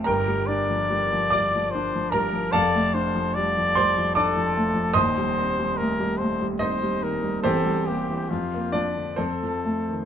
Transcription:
<<
  \new Staff \with { instrumentName = "Trumpet" } { \time 3/4 \key c \dorian \tempo 4 = 72 bes'8 d''4. c''8 bes'8 | d''8 c''8 d''4 a'4 | c''4 bes'8 c''8 c''8 bes'8 | a'8 g'8 f'8 r8 a'4 | }
  \new Staff \with { instrumentName = "Grand piano" } { \time 3/4 \key c \dorian <bes' g'' bes''>4. <d'' d'''>8 r8 <bes' bes''>8 | <a' f'' a''>4. <c'' c'''>8 <d'' a'' d'''>4 | <ees'' c''' ees'''>2 <ees' c'' ees''>4 | <c' g' c''>4. <d' d''>8 <c' a' c''>4 | }
  \new Staff \with { instrumentName = "Grand piano" } { \clef bass \time 3/4 \key c \dorian <g,, g,>16 g16 d'16 f16 g16 f16 g16 f16 d'16 f16 g16 f16 | <f,, f,>16 a16 d'16 f16 g16 f16 g16 f16 d'16 f16 a16 f16 | <ees,, ees,>16 g16 c'16 g16 a16 g16 a16 g16 c'16 g16 ees16 g16 | <e,, e,>16 g16 bes16 e16 f,16 bes16 f16 d16 f,16 f16 a16 ees16 | }
>>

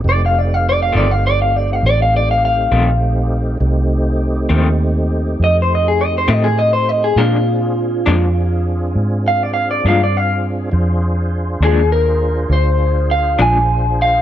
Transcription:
<<
  \new Staff \with { instrumentName = "Clean electric guitar" } { \time 12/8 \key f \mixolydian \tempo 4. = 67 d''16 f''16 d''16 f''16 d''16 f''16 d''16 f''16 d''16 f''16 d''16 f''16 d''16 f''16 d''16 f''16 f''2~ | f''4 r2 ees''16 c''16 ees''16 aes'16 ees''16 c''16 ees''16 aes'16 ees''16 c''16 ees''16 aes'16 | f'2. r8 f''16 d''16 f''16 d''16 f''16 d''16 f''8 r8 | r4. aes'8 bes'4 c''4 f''8 aes''4 f''8 | }
  \new Staff \with { instrumentName = "Tonewheel organ" } { \time 12/8 \key f \mixolydian <a c' ees' g'>1. | <a c' ees' g'>1. | <c' d' f' aes'>1. | <d' f' aes' c''>1. | }
  \new Staff \with { instrumentName = "Clean electric guitar" } { \clef bass \time 12/8 \key f \mixolydian r4. <f, ees a c'>8 r2 r8 <f, ees a c'>8 r4 | r4. <f, ees a c'>8 r2 r8 <f, ees a c'>8 r4 | <bes, f aes d'>8 r4 <bes, f aes d'>8 r2 r8 <bes, f aes d'>8 r4 | r4. <bes, f aes d'>8 r2 r8 <bes, f aes d'>8 r4 | }
  \new Staff \with { instrumentName = "Fingered electric bass" } { \clef bass \time 12/8 \key f \mixolydian f,,4. g,,4. a,,4. bes,,4. | c,4. ees,4. f,4. a,4. | bes,4. f,4. aes,4. g,4. | f,4. ees,4. d,4. bes,,4. | }
>>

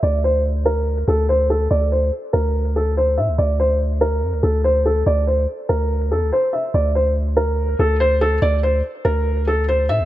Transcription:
<<
  \new Staff \with { instrumentName = "Felt piano" } { \time 4/4 \key bes \lydian \tempo 4 = 143 d''8 c''8 r8 bes'4 a'8 c''8 a'8 | d''8 c''8 r8 bes'4 a'8 c''8 e''8 | d''8 c''8 r8 bes'4 a'8 c''8 a'8 | d''8 c''8 r8 bes'4 a'8 c''8 e''8 |
d''8 c''8 r8 bes'4 a'8 c''8 a'8 | d''8 c''8 r8 bes'4 a'8 c''8 e''8 | }
  \new Staff \with { instrumentName = "808-style bass" } { \clef bass \time 4/4 \key bes \lydian d,2~ d,8 d,4. | d,4 r8 d,2 a,16 d,16 | d,2 f,16 d,16 d,4. | d,4 r8 d,4 e,16 d,16 r4 |
d,2~ d,8 d,4. | d,4 r8 d,2 a,16 d,16 | }
>>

